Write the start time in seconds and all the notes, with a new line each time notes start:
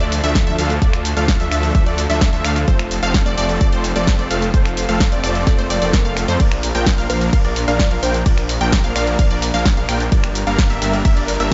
Already playing: D4 F4 A4
0.00 D2 F3 A3 D4 A4 D5, closed hi-hat
0.12 open hi-hat, shaker
0.24 D2 F3 A3 D4 A4 E5, closed hi-hat, shaker
0.35 kick, snare, closed hi-hat, shaker
0.47 D2 F3 A3 D4 A4 E5, closed hi-hat
0.58 D2 F3 A3 D4 A4 F5, open hi-hat, shaker
0.70 closed hi-hat, shaker
0.82 D2 F3 A3 D4 A4 D5, kick, closed hi-hat, shaker
0.93 finger snap, closed hi-hat, shaker
1.05 open hi-hat, shaker
1.17 D2 F3 A3 D4 A4 F5, closed hi-hat, shaker
1.28 kick, snare, closed hi-hat, shaker
1.40 D2 F3 A3 D4 A4 E5, closed hi-hat, shaker
1.52 D2 F3 A3 D4 A4 E5, finger snap, open hi-hat, shaker
1.63 closed hi-hat, shaker
1.75 D2 F3 A3 D4 A4 E5, kick, closed hi-hat, shaker
1.86 D2 F3 A3 D4 A4 D5, closed hi-hat
1.98 open hi-hat, shaker
2.10 D2 F3 A3 D4 A4 E5, open hi-hat, shaker
2.21 kick, snare, closed hi-hat, shaker
2.33 D2 F3 A3 D4 A4 E5, closed hi-hat
2.45 D2 F3 A3 D4 A4 F5, finger snap, open hi-hat, shaker
2.56 closed hi-hat, shaker
2.68 F1 F3 A3 C4 A4 C5, kick, closed hi-hat, shaker
2.79 finger snap, closed hi-hat, shaker
2.91 open hi-hat, shaker
3.03 F1 F3 A3 C4 A4 F5, closed hi-hat, shaker
3.14 kick, snare, closed hi-hat, shaker
3.26 F1 F3 A3 C4 A4 D5, closed hi-hat, shaker
3.38 F1 F3 A3 C4 A4 D5, open hi-hat, shaker
3.49 closed hi-hat, shaker
3.61 F1 F3 A3 A4 D5, kick, closed hi-hat, shaker
3.72 F1 F3 A3 C4 A4 C5, closed hi-hat
3.84 open hi-hat, shaker
3.96 F1 F3 A3 C4 A4 D5, closed hi-hat, shaker
4.07 kick, snare, closed hi-hat, shaker
4.19 F1 F3 A3 C4 A4 D5, closed hi-hat
4.31 F1 F3 A3 C4 A4 F5, open hi-hat, shaker
4.42 closed hi-hat, shaker
4.54 F1 F3 A3 C4 A4 C5, kick, closed hi-hat, shaker
4.65 finger snap, closed hi-hat, shaker
4.77 open hi-hat, shaker
4.89 F1 F3 A3 C4 A4 F5, closed hi-hat, shaker
5.00 kick, snare, closed hi-hat, shaker
5.12 F1 F3 A3 C4 A4 D5, closed hi-hat, shaker
5.24 F1 F3 A3 C4 A4 D5, finger snap, open hi-hat, shaker
5.35 closed hi-hat, shaker
5.47 F1 F3 A3 C4 A4 D5, kick, snare, closed hi-hat, swell, shaker
5.59 F1 F3 A3 C4 A4 C5, closed hi-hat
5.70 F1 F3 A3 C4 A4 D5, open hi-hat, shaker
5.82 F1 F3 A3 C4 A4 D5, open hi-hat, shaker
5.93 kick, snare, closed hi-hat, shaker
6.05 F1 F3 A3 C4 A4 F5, closed hi-hat, shaker
6.17 finger snap, open hi-hat, shaker
6.28 F2 F3 A3 C4 A4 C5, closed hi-hat, shaker
6.40 A#1 A#3 D4 A#4 D5, kick, closed hi-hat, ride, shaker
6.52 finger snap, closed hi-hat, shaker
6.63 open hi-hat, shaker
6.75 A#1 F3 A#3 D4 A#4 G5, closed hi-hat, shaker
6.86 kick, snare, closed hi-hat, ride, shaker
6.98 A#1 F3 A#3 D4 A#4 F5, closed hi-hat, shaker
7.10 A#1 F3 A#3 D4 A#4 C5 F5, open hi-hat, shaker
7.21 closed hi-hat, shaker
7.33 A#1 F3 A#3 D4 A#4 F5, kick, closed hi-hat, ride, shaker
7.45 A#1 F3 A#3 D4 A#4 D5, closed hi-hat
7.56 open hi-hat, shaker
7.68 A#1 F3 A#3 D4 A#4 D5 F5, closed hi-hat, shaker
7.79 kick, snare, closed hi-hat, ride, shaker
7.91 A#1 F3 A#3 D4 A#4 F5, closed hi-hat
8.03 A#1 F3 A#3 D4 A#4 C5 G5, open hi-hat, shaker
8.14 closed hi-hat, shaker
8.26 A#1 F3 A#3 D4 A#4 D5, kick, closed hi-hat, ride, shaker
8.38 finger snap, closed hi-hat, shaker
8.49 open hi-hat, shaker
8.61 A#1 F3 A#3 D4 A#4 G5, closed hi-hat, shaker
8.72 kick, snare, closed hi-hat, ride, shaker
8.84 A#1 F3 A#3 D4 A#4 F5, closed hi-hat, shaker
8.96 A#1 F3 A#3 D4 A#4 D5 F5, finger snap, open hi-hat, shaker
9.07 closed hi-hat, shaker
9.19 A#1 F3 A#3 D4 A#4 F5, kick, closed hi-hat, ride, shaker
9.31 A#1 F3 A#3 D4 A#4 D5, closed hi-hat
9.42 open hi-hat, shaker
9.54 A#1 F3 A#3 D4 A#4 F5, open hi-hat, shaker
9.65 kick, snare, closed hi-hat, ride, shaker
9.77 A#1 F3 A#3 D4 A#4 F5, closed hi-hat
9.89 A#1 F3 A#3 D4 A#4 G5, finger snap, open hi-hat, shaker
10.00 closed hi-hat, shaker
10.12 G1 G3 A#3 D4 G4 A#4 D5, kick, closed hi-hat, ride, shaker
10.24 finger snap, closed hi-hat, shaker
10.35 open hi-hat, shaker
10.47 G1 G3 A#3 D4 A#4 F5, closed hi-hat, shaker
10.59 kick, snare, closed hi-hat, ride, shaker
10.70 G1 G3 A#3 D4 A#4 E5, closed hi-hat, shaker
10.82 G1 G3 A#3 D4 A#4 E5, open hi-hat, shaker
10.93 closed hi-hat, shaker
11.05 G1 G3 A#3 D4 A#4 E5, kick, closed hi-hat, ride, shaker
11.17 G1 G3 A#3 D4 A#4 D5, closed hi-hat
11.28 open hi-hat, shaker
11.40 G1 G3 A#3 D4 A#4 E5, closed hi-hat, shaker